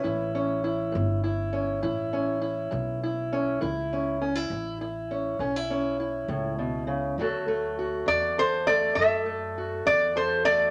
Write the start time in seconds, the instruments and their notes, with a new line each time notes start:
Already playing: steel-string acoustic guitar C#4, resonator guitar played with a steel bar B4
0.03 upright bass A1, steel-string acoustic guitar A2 E4
0.35 steel-string acoustic guitar C#4
0.64 steel-string acoustic guitar E4
0.92 upright bass G1, steel-string acoustic guitar A2
1.24 steel-string acoustic guitar E4
1.53 steel-string acoustic guitar C#4
1.83 upright bass A1, steel-string acoustic guitar A2 E4
2.13 steel-string acoustic guitar C#4
2.41 steel-string acoustic guitar E4
2.71 upright bass B1, steel-string acoustic guitar A2
3.03 steel-string acoustic guitar E4
3.33 steel-string acoustic guitar C#4
3.61 upright bass C#2, steel-string acoustic guitar A2 E4
3.93 steel-string acoustic guitar C#4
4.21 steel-string acoustic guitar C#4
4.35 steel-string acoustic guitar E4
4.50 upright bass A1, steel-string acoustic guitar A2
4.81 steel-string acoustic guitar E4
5.11 steel-string acoustic guitar C#4
5.39 upright bass B1, steel-string acoustic guitar A2 C#4
5.56 steel-string acoustic guitar E4
5.70 steel-string acoustic guitar C#4
6.00 steel-string acoustic guitar E4
6.28 upright bass C#2, steel-string acoustic guitar A2
6.59 steel-string acoustic guitar B2
6.87 steel-string acoustic guitar C#3
7.18 upright bass D2, steel-string acoustic guitar D3 F#3 A3 F#4 A4
7.48 steel-string acoustic guitar A3
7.79 steel-string acoustic guitar F#4
8.06 upright bass E2, steel-string acoustic guitar D3, resonator guitar played with a steel bar D5
8.38 steel-string acoustic guitar A4, resonator guitar played with a steel bar C5
8.67 steel-string acoustic guitar A3, resonator guitar played with a steel bar D5
8.95 upright bass F#2, steel-string acoustic guitar D3 A4, resonator guitar played with a steel bar E5
9.26 steel-string acoustic guitar A3
9.58 steel-string acoustic guitar F#4
9.86 upright bass E2, steel-string acoustic guitar D3, resonator guitar played with a steel bar D5
10.16 steel-string acoustic guitar A4, resonator guitar played with a steel bar C5
10.45 steel-string acoustic guitar A3, resonator guitar played with a steel bar D5